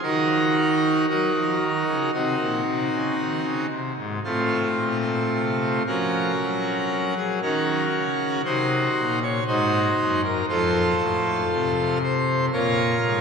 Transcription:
0.03 D#3 D#4 F#4 A#4
1.09 F#3 D#4 F#4 A#4
1.35 F3
1.62 D#3
1.87 C#3
2.13 C3 C4 D#4 F#4
2.40 A#2
2.66 C3
2.92 C#3
3.19 D#3
3.44 C#3
3.71 C3
3.97 G#2
4.24 A2 A3 C4 F4
4.77 A#2
5.33 C3
5.87 F3 C#4 F#4 A#4
6.40 F#3
7.17 G#4
7.42 D#3 C#4 F#4 A#4
7.95 C#3
8.45 C3 D#4 F#4 C5
8.97 A#2
9.23 C#5
9.47 G#2 D#4 F#4 C5
9.99 F#2
10.24 A#4
10.49 F2 F4 A4 C5
11.00 A2
11.52 C3
12.03 C5
12.53 A#2 F4 A#4 C#5
13.04 G#2

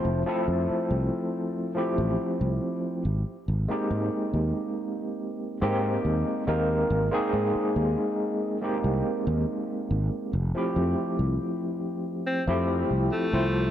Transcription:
Already playing: F3 A3 C4 E4 C5
0.05 F1
0.26 F3 A3 C4 E4 A4
0.48 F2
0.70 muted fretless electric bass stroke
0.91 C2
1.75 F3 A3 C4 E4 G4
1.98 A1
2.41 C2
3.05 G#1
3.48 G#1
3.68 G#3 A#3 C4 D#4 G4
3.91 G#2
4.34 D#2
5.61 G#2 G#3 A#3 C4 D#4 G4
6.05 D#2
6.47 D#2 G#3 A#3 C4 D#4 A#4
6.90 G#1
7.11 G#3 A#3 C4 D#4 G#4
7.33 G#2
7.55 muted fretless electric bass stroke
7.76 D#2
8.61 G#3 A#3 C4 D#4 G4
8.84 C2
9.27 D#2
9.90 G#1
10.33 F1
10.54 F3 A3 C4 E4 G4
10.76 F2
11.19 C2
12.26 C4
12.47 F2 F3 A3 C4 E4 G4
12.90 C2
13.12 A3
13.33 C2 F3 A3 C4 E4 C5

